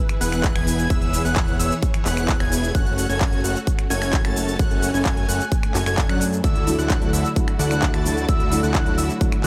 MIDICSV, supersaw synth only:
0, 0, Header, 1, 2, 480
1, 0, Start_track
1, 0, Tempo, 461538
1, 938, Time_signature, 4, 2, 24, 8
1, 9848, End_track
2, 0, Start_track
2, 0, Title_t, "Supersaw synth"
2, 0, Program_c, 0, 81
2, 217, Note_on_c, 0, 78, 111
2, 218, Note_on_c, 0, 59, 103
2, 218, Note_on_c, 0, 64, 92
2, 218, Note_on_c, 0, 68, 93
2, 218, Note_on_c, 0, 71, 91
2, 549, Note_off_c, 0, 59, 0
2, 549, Note_off_c, 0, 64, 0
2, 549, Note_off_c, 0, 68, 0
2, 549, Note_off_c, 0, 71, 0
2, 549, Note_off_c, 0, 78, 0
2, 578, Note_on_c, 0, 59, 98
2, 578, Note_on_c, 0, 64, 89
2, 578, Note_on_c, 0, 68, 85
2, 578, Note_on_c, 0, 71, 87
2, 578, Note_on_c, 0, 80, 107
2, 909, Note_off_c, 0, 59, 0
2, 909, Note_off_c, 0, 64, 0
2, 909, Note_off_c, 0, 68, 0
2, 909, Note_off_c, 0, 71, 0
2, 909, Note_off_c, 0, 80, 0
2, 938, Note_on_c, 0, 59, 89
2, 938, Note_on_c, 0, 64, 84
2, 938, Note_on_c, 0, 68, 84
2, 938, Note_on_c, 0, 71, 84
2, 938, Note_on_c, 0, 76, 102
2, 1269, Note_off_c, 0, 59, 0
2, 1269, Note_off_c, 0, 64, 0
2, 1269, Note_off_c, 0, 68, 0
2, 1269, Note_off_c, 0, 71, 0
2, 1269, Note_off_c, 0, 76, 0
2, 1298, Note_on_c, 0, 68, 83
2, 1298, Note_on_c, 0, 71, 86
2, 1298, Note_on_c, 0, 78, 104
2, 1299, Note_on_c, 0, 59, 90
2, 1299, Note_on_c, 0, 64, 89
2, 1629, Note_off_c, 0, 64, 0
2, 1629, Note_off_c, 0, 68, 0
2, 1629, Note_off_c, 0, 71, 0
2, 1629, Note_off_c, 0, 78, 0
2, 1630, Note_off_c, 0, 59, 0
2, 1658, Note_on_c, 0, 59, 81
2, 1658, Note_on_c, 0, 64, 76
2, 1658, Note_on_c, 0, 68, 72
2, 1658, Note_on_c, 0, 71, 74
2, 1658, Note_on_c, 0, 76, 86
2, 1809, Note_off_c, 0, 59, 0
2, 1809, Note_off_c, 0, 64, 0
2, 1809, Note_off_c, 0, 68, 0
2, 1809, Note_off_c, 0, 71, 0
2, 1809, Note_off_c, 0, 76, 0
2, 2137, Note_on_c, 0, 59, 99
2, 2137, Note_on_c, 0, 64, 92
2, 2137, Note_on_c, 0, 68, 91
2, 2137, Note_on_c, 0, 71, 92
2, 2137, Note_on_c, 0, 78, 111
2, 2468, Note_off_c, 0, 68, 0
2, 2469, Note_off_c, 0, 59, 0
2, 2469, Note_off_c, 0, 64, 0
2, 2469, Note_off_c, 0, 71, 0
2, 2469, Note_off_c, 0, 78, 0
2, 2497, Note_on_c, 0, 59, 98
2, 2498, Note_on_c, 0, 64, 89
2, 2498, Note_on_c, 0, 68, 91
2, 2498, Note_on_c, 0, 71, 87
2, 2498, Note_on_c, 0, 80, 109
2, 2829, Note_off_c, 0, 59, 0
2, 2829, Note_off_c, 0, 64, 0
2, 2829, Note_off_c, 0, 68, 0
2, 2829, Note_off_c, 0, 71, 0
2, 2829, Note_off_c, 0, 80, 0
2, 2858, Note_on_c, 0, 69, 83
2, 2859, Note_on_c, 0, 61, 92
2, 2859, Note_on_c, 0, 66, 84
2, 2859, Note_on_c, 0, 73, 86
2, 2859, Note_on_c, 0, 78, 104
2, 3189, Note_off_c, 0, 61, 0
2, 3189, Note_off_c, 0, 69, 0
2, 3189, Note_off_c, 0, 73, 0
2, 3190, Note_off_c, 0, 66, 0
2, 3190, Note_off_c, 0, 78, 0
2, 3219, Note_on_c, 0, 61, 93
2, 3219, Note_on_c, 0, 66, 84
2, 3219, Note_on_c, 0, 69, 86
2, 3219, Note_on_c, 0, 73, 84
2, 3219, Note_on_c, 0, 80, 105
2, 3550, Note_off_c, 0, 61, 0
2, 3550, Note_off_c, 0, 66, 0
2, 3550, Note_off_c, 0, 69, 0
2, 3550, Note_off_c, 0, 73, 0
2, 3550, Note_off_c, 0, 80, 0
2, 3578, Note_on_c, 0, 61, 80
2, 3578, Note_on_c, 0, 66, 74
2, 3578, Note_on_c, 0, 69, 71
2, 3578, Note_on_c, 0, 73, 74
2, 3578, Note_on_c, 0, 78, 90
2, 3729, Note_off_c, 0, 61, 0
2, 3729, Note_off_c, 0, 66, 0
2, 3729, Note_off_c, 0, 69, 0
2, 3729, Note_off_c, 0, 73, 0
2, 3729, Note_off_c, 0, 78, 0
2, 4057, Note_on_c, 0, 66, 94
2, 4057, Note_on_c, 0, 69, 91
2, 4058, Note_on_c, 0, 61, 101
2, 4058, Note_on_c, 0, 73, 92
2, 4058, Note_on_c, 0, 80, 113
2, 4389, Note_off_c, 0, 61, 0
2, 4389, Note_off_c, 0, 66, 0
2, 4389, Note_off_c, 0, 69, 0
2, 4389, Note_off_c, 0, 73, 0
2, 4389, Note_off_c, 0, 80, 0
2, 4416, Note_on_c, 0, 69, 90
2, 4416, Note_on_c, 0, 81, 107
2, 4417, Note_on_c, 0, 61, 96
2, 4417, Note_on_c, 0, 66, 84
2, 4417, Note_on_c, 0, 73, 89
2, 4748, Note_off_c, 0, 69, 0
2, 4748, Note_off_c, 0, 81, 0
2, 4749, Note_off_c, 0, 61, 0
2, 4749, Note_off_c, 0, 66, 0
2, 4749, Note_off_c, 0, 73, 0
2, 4777, Note_on_c, 0, 61, 90
2, 4777, Note_on_c, 0, 66, 83
2, 4777, Note_on_c, 0, 69, 82
2, 4777, Note_on_c, 0, 73, 83
2, 4777, Note_on_c, 0, 78, 99
2, 5108, Note_off_c, 0, 78, 0
2, 5109, Note_off_c, 0, 61, 0
2, 5109, Note_off_c, 0, 66, 0
2, 5109, Note_off_c, 0, 69, 0
2, 5109, Note_off_c, 0, 73, 0
2, 5137, Note_on_c, 0, 61, 91
2, 5137, Note_on_c, 0, 66, 83
2, 5137, Note_on_c, 0, 69, 86
2, 5137, Note_on_c, 0, 73, 83
2, 5137, Note_on_c, 0, 80, 103
2, 5469, Note_off_c, 0, 61, 0
2, 5469, Note_off_c, 0, 66, 0
2, 5469, Note_off_c, 0, 69, 0
2, 5469, Note_off_c, 0, 73, 0
2, 5469, Note_off_c, 0, 80, 0
2, 5497, Note_on_c, 0, 61, 80
2, 5497, Note_on_c, 0, 66, 76
2, 5497, Note_on_c, 0, 69, 73
2, 5497, Note_on_c, 0, 73, 73
2, 5497, Note_on_c, 0, 78, 86
2, 5649, Note_off_c, 0, 61, 0
2, 5649, Note_off_c, 0, 66, 0
2, 5649, Note_off_c, 0, 69, 0
2, 5649, Note_off_c, 0, 73, 0
2, 5649, Note_off_c, 0, 78, 0
2, 5977, Note_on_c, 0, 61, 76
2, 5977, Note_on_c, 0, 69, 70
2, 5977, Note_on_c, 0, 73, 70
2, 5977, Note_on_c, 0, 80, 82
2, 5978, Note_on_c, 0, 66, 69
2, 6080, Note_off_c, 0, 61, 0
2, 6080, Note_off_c, 0, 66, 0
2, 6080, Note_off_c, 0, 69, 0
2, 6080, Note_off_c, 0, 73, 0
2, 6080, Note_off_c, 0, 80, 0
2, 6097, Note_on_c, 0, 61, 95
2, 6097, Note_on_c, 0, 66, 86
2, 6097, Note_on_c, 0, 69, 88
2, 6097, Note_on_c, 0, 73, 87
2, 6097, Note_on_c, 0, 80, 103
2, 6309, Note_off_c, 0, 61, 0
2, 6309, Note_off_c, 0, 66, 0
2, 6309, Note_off_c, 0, 69, 0
2, 6309, Note_off_c, 0, 73, 0
2, 6309, Note_off_c, 0, 80, 0
2, 6335, Note_on_c, 0, 66, 87
2, 6336, Note_on_c, 0, 61, 98
2, 6336, Note_on_c, 0, 69, 87
2, 6336, Note_on_c, 0, 73, 85
2, 6336, Note_on_c, 0, 78, 105
2, 6488, Note_off_c, 0, 61, 0
2, 6488, Note_off_c, 0, 66, 0
2, 6488, Note_off_c, 0, 69, 0
2, 6488, Note_off_c, 0, 73, 0
2, 6488, Note_off_c, 0, 78, 0
2, 6696, Note_on_c, 0, 64, 94
2, 6696, Note_on_c, 0, 66, 83
2, 6696, Note_on_c, 0, 69, 85
2, 6696, Note_on_c, 0, 74, 82
2, 6696, Note_on_c, 0, 76, 100
2, 7028, Note_off_c, 0, 64, 0
2, 7028, Note_off_c, 0, 66, 0
2, 7028, Note_off_c, 0, 69, 0
2, 7028, Note_off_c, 0, 74, 0
2, 7028, Note_off_c, 0, 76, 0
2, 7056, Note_on_c, 0, 64, 94
2, 7056, Note_on_c, 0, 66, 83
2, 7056, Note_on_c, 0, 69, 84
2, 7056, Note_on_c, 0, 74, 84
2, 7056, Note_on_c, 0, 78, 100
2, 7388, Note_off_c, 0, 64, 0
2, 7388, Note_off_c, 0, 66, 0
2, 7388, Note_off_c, 0, 69, 0
2, 7388, Note_off_c, 0, 74, 0
2, 7388, Note_off_c, 0, 78, 0
2, 7416, Note_on_c, 0, 64, 80
2, 7416, Note_on_c, 0, 66, 73
2, 7416, Note_on_c, 0, 69, 77
2, 7416, Note_on_c, 0, 74, 72
2, 7416, Note_on_c, 0, 76, 91
2, 7568, Note_off_c, 0, 66, 0
2, 7568, Note_off_c, 0, 76, 0
2, 7569, Note_off_c, 0, 64, 0
2, 7569, Note_off_c, 0, 69, 0
2, 7569, Note_off_c, 0, 74, 0
2, 7896, Note_on_c, 0, 66, 93
2, 7896, Note_on_c, 0, 69, 89
2, 7896, Note_on_c, 0, 74, 93
2, 7896, Note_on_c, 0, 78, 109
2, 7897, Note_on_c, 0, 64, 103
2, 8228, Note_off_c, 0, 64, 0
2, 8228, Note_off_c, 0, 66, 0
2, 8228, Note_off_c, 0, 69, 0
2, 8228, Note_off_c, 0, 74, 0
2, 8228, Note_off_c, 0, 78, 0
2, 8258, Note_on_c, 0, 64, 93
2, 8258, Note_on_c, 0, 66, 86
2, 8258, Note_on_c, 0, 69, 87
2, 8258, Note_on_c, 0, 74, 87
2, 8258, Note_on_c, 0, 81, 104
2, 8589, Note_off_c, 0, 64, 0
2, 8589, Note_off_c, 0, 66, 0
2, 8589, Note_off_c, 0, 69, 0
2, 8589, Note_off_c, 0, 74, 0
2, 8589, Note_off_c, 0, 81, 0
2, 8617, Note_on_c, 0, 66, 82
2, 8617, Note_on_c, 0, 76, 101
2, 8618, Note_on_c, 0, 64, 91
2, 8618, Note_on_c, 0, 69, 84
2, 8618, Note_on_c, 0, 74, 84
2, 8949, Note_off_c, 0, 64, 0
2, 8949, Note_off_c, 0, 66, 0
2, 8949, Note_off_c, 0, 69, 0
2, 8949, Note_off_c, 0, 74, 0
2, 8949, Note_off_c, 0, 76, 0
2, 8978, Note_on_c, 0, 64, 92
2, 8978, Note_on_c, 0, 66, 83
2, 8978, Note_on_c, 0, 69, 84
2, 8978, Note_on_c, 0, 74, 83
2, 8978, Note_on_c, 0, 78, 102
2, 9309, Note_off_c, 0, 64, 0
2, 9309, Note_off_c, 0, 66, 0
2, 9309, Note_off_c, 0, 69, 0
2, 9309, Note_off_c, 0, 74, 0
2, 9309, Note_off_c, 0, 78, 0
2, 9338, Note_on_c, 0, 64, 81
2, 9338, Note_on_c, 0, 66, 74
2, 9338, Note_on_c, 0, 69, 74
2, 9338, Note_on_c, 0, 74, 73
2, 9338, Note_on_c, 0, 76, 89
2, 9489, Note_off_c, 0, 64, 0
2, 9489, Note_off_c, 0, 66, 0
2, 9489, Note_off_c, 0, 69, 0
2, 9489, Note_off_c, 0, 74, 0
2, 9489, Note_off_c, 0, 76, 0
2, 9848, End_track
0, 0, End_of_file